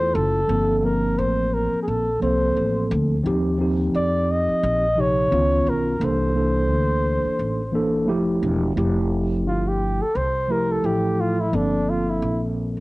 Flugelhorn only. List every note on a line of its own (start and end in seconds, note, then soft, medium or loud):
0.00 0.16 C5 loud
0.15 0.79 A4 loud
0.79 0.86 A4 medium
0.84 1.20 A#4 medium
1.19 1.55 C5 medium
1.54 1.82 A#4 medium
1.83 1.90 G#4 medium
1.88 2.22 A4 medium
2.22 2.87 C5 medium
3.96 4.33 D5 loud
4.31 5.02 D#5 medium
5.00 5.71 C#5 loud
5.69 6.06 A#4 medium
6.04 8.10 C5 medium
9.47 9.69 F4 medium
9.68 10.03 G4 medium
10.02 10.18 A4 loud
10.17 10.53 C5 loud
10.51 10.73 A#4 loud
10.72 10.87 A4 medium
10.85 11.22 G4 medium
11.20 11.42 F4 medium
11.40 11.56 E4 medium
11.55 11.91 D4 medium
11.89 12.11 F4 medium
12.10 12.43 E4 medium